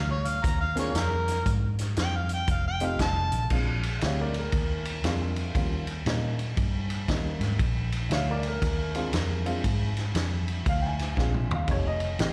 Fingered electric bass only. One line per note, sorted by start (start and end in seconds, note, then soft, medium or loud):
0.00 0.40 D2 medium
0.44 0.92 D#2 medium
0.95 1.42 F2 medium
1.46 1.94 G#2 medium
1.97 2.45 F2 medium
2.48 2.96 F1 medium
2.99 3.30 F1 medium
3.32 3.49 A#1 medium
3.50 3.98 A#1 medium
4.02 4.49 D2 medium
4.53 5.00 D#2 medium
5.04 5.51 F2 medium
5.55 6.02 D#2 medium
6.06 6.54 A#2 medium
6.57 7.05 G2 medium
7.08 7.39 D#2 medium
7.40 7.58 G#2 medium
7.59 8.07 A#1 medium
8.10 8.58 D2 medium
8.62 9.09 D#2 medium
9.13 9.60 F2 medium
9.64 10.11 G#2 medium
10.15 10.62 F2 medium
10.66 11.13 D2 medium
11.17 11.47 A#1 medium
11.50 11.67 D#2 medium
11.68 12.15 F1 medium
12.19 12.33 A1 medium